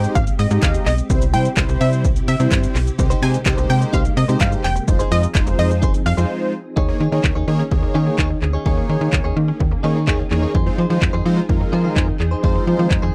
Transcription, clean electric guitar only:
2.98 muted clean electric guitar stroke soft
3.10 3.21 D#4 medium
3.10 3.22 G4 medium
3.10 3.23 C5 medium
3.22 3.37 D#4 medium
3.22 3.34 G4 medium
3.22 3.33 C5 medium
3.34 muted clean electric guitar stroke soft
3.46 muted clean electric guitar stroke soft
3.58 muted clean electric guitar stroke medium
3.81 muted clean electric guitar stroke soft
3.93 4.12 D#4 medium
3.93 4.05 G4 medium
3.93 4.04 C5 medium
4.05 muted clean electric guitar stroke soft
4.17 muted clean electric guitar stroke medium
4.28 4.39 D#4 soft
4.28 4.40 G4 medium
4.28 4.41 C5 medium
4.40 muted clean electric guitar stroke soft
4.52 muted clean electric guitar stroke soft
4.76 muted clean electric guitar stroke medium
4.88 muted clean electric guitar stroke soft
4.99 5.10 D#4 medium
4.99 5.11 G#4 medium
4.99 5.12 C5 medium
5.11 5.27 D#4 medium
5.11 5.23 G#4 medium
5.11 5.22 C5 medium
5.23 muted clean electric guitar stroke soft
5.35 muted clean electric guitar stroke soft
5.47 muted clean electric guitar stroke soft
5.70 muted clean electric guitar stroke medium
5.82 6.01 D#4 medium
5.82 5.94 G#4 medium
5.82 5.93 C5 loud
5.94 muted clean electric guitar stroke medium
6.06 muted clean electric guitar stroke soft
6.17 6.30 D#4 soft
6.17 6.30 G#4 medium
6.17 6.29 C5 medium
6.76 6.95 D#4 medium
6.76 6.96 G#4 medium
6.76 6.96 C#5 medium
7.00 7.12 D#4 medium
7.00 7.12 G#4 medium
7.00 7.10 C#5 medium
7.12 7.22 D#4 soft
7.12 7.23 G#4 soft
7.12 7.24 C#5 medium
7.24 muted clean electric guitar stroke soft
7.35 7.46 D#4 medium
7.35 7.47 G#4 medium
7.35 7.48 C#5 medium
7.47 muted clean electric guitar stroke soft
7.59 muted clean electric guitar stroke soft
7.71 muted clean electric guitar stroke soft
7.83 muted clean electric guitar stroke soft
7.94 8.07 D#4 medium
7.94 8.06 G#4 medium
7.94 8.05 C#5 medium
8.06 8.17 D#4 soft
8.06 8.18 G#4 medium
8.06 8.19 C#5 medium
8.18 8.37 D#4 medium
8.18 8.30 G#4 medium
8.18 8.29 C#5 medium
8.30 muted clean electric guitar stroke soft
8.42 muted clean electric guitar stroke soft
8.53 8.64 D#4 medium
8.53 8.65 G#4 medium
8.53 8.66 C#5 medium
8.65 8.84 D#4 medium
8.65 8.85 G#4 medium
8.65 8.85 C#5 medium
8.89 9.01 D#4 medium
8.89 9.00 G#4 medium
8.89 8.99 C#5 medium
9.01 9.11 D#4 soft
9.01 9.12 G#4 medium
9.01 9.13 C#5 medium
9.13 muted clean electric guitar stroke soft
9.24 9.35 D#4 medium
9.24 9.36 G#4 medium
9.24 9.36 C#5 medium
9.48 muted clean electric guitar stroke soft
9.60 muted clean electric guitar stroke soft
9.71 muted clean electric guitar stroke soft
9.83 9.96 D#4 medium
9.83 9.95 G#4 medium
9.83 9.94 C#5 medium
9.95 10.06 D#4 medium
9.95 10.07 G#4 medium
9.95 10.07 C#5 medium
10.07 10.26 D#4 medium
10.07 10.19 G#4 medium
10.07 10.18 C#5 loud
10.19 muted clean electric guitar stroke soft
10.31 muted clean electric guitar stroke soft
10.42 10.53 D#4 medium
10.42 10.54 G#4 medium
10.42 10.56 C#5 medium
10.54 10.73 D#4 medium
10.54 10.74 G#4 medium
10.54 10.74 C5 loud
10.78 10.90 D#4 medium
10.78 10.89 G#4 medium
10.78 10.88 C5 medium
10.90 11.00 D#4 soft
10.90 11.01 G#4 medium
10.90 11.02 C5 medium
11.13 11.24 D#4 medium
11.13 11.25 G#4 medium
11.13 11.25 C5 medium
11.25 muted clean electric guitar stroke soft
11.37 muted clean electric guitar stroke medium
11.49 muted clean electric guitar stroke soft
11.61 muted clean electric guitar stroke soft
11.72 11.85 D#4 medium
11.72 11.84 G#4 medium
11.72 11.83 C5 medium
11.84 11.95 D#4 medium
11.84 11.96 G#4 medium
11.84 11.96 C5 medium
11.96 12.15 D#4 medium
11.96 12.08 G#4 medium
11.96 12.07 C5 loud
12.08 muted clean electric guitar stroke soft
12.20 muted clean electric guitar stroke soft
12.31 12.42 D#4 medium
12.31 12.43 G#4 medium
12.31 12.44 C5 medium
12.43 12.62 D#4 medium
12.43 12.63 G#4 medium
12.43 12.63 C5 loud
12.67 12.79 D#4 medium
12.67 12.78 G#4 medium
12.67 12.77 C5 medium
12.79 12.89 D#4 soft
12.79 12.90 G#4 medium
12.79 12.91 C5 medium
12.91 muted clean electric guitar stroke soft
13.02 13.13 D#4 medium
13.02 13.14 G#4 medium
13.02 13.14 C5 medium

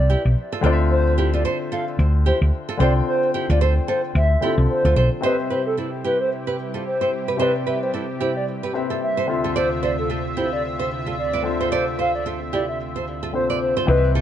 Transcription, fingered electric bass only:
0.00 0.14 C2 loud
0.25 0.34 B1 medium
0.64 1.44 D2 loud
1.99 2.30 D2 loud
2.42 2.50 D2 medium
2.80 3.00 C2 medium
3.50 3.78 D2 medium
4.15 4.35 D2 loud
4.58 4.66 C2 medium
4.85 4.93 D2 medium
4.96 5.08 B1 medium
13.88 14.20 C2 loud

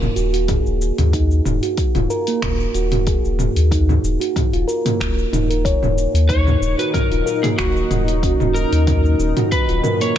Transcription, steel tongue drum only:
0.00 0.15 A#3 medium
0.16 0.32 F#4 medium
0.33 0.47 F#4 medium
0.48 0.65 G#4 medium
1.13 1.61 D#4 medium
1.63 1.93 F#4 medium
1.95 2.09 F4 medium
2.10 2.27 A#4 loud
2.28 2.73 A#3 medium
2.75 2.91 F#4 medium
2.92 3.05 F#4 medium
3.07 3.23 G#4 medium
3.71 4.19 D#4 medium
4.20 4.51 F#4 medium
4.53 4.67 F4 medium
4.68 4.84 A#4 loud
4.85 5.31 A#3 medium
5.32 5.48 D#4 medium
5.50 5.63 A#4 medium
5.65 5.80 C#5 loud
6.29 6.77 D#4 medium
6.78 7.09 F#4 medium
7.11 7.25 F4 medium
7.26 7.43 A#4 loud
7.43 7.89 A#3 medium
7.91 8.07 F#4 medium
8.08 8.22 F#4 medium
8.23 8.39 C#4 medium
8.87 9.35 D#4 medium
9.37 9.67 F#4 medium
9.69 9.83 F4 medium
9.84 10.00 A#4 loud
10.01 10.18 A#3 medium

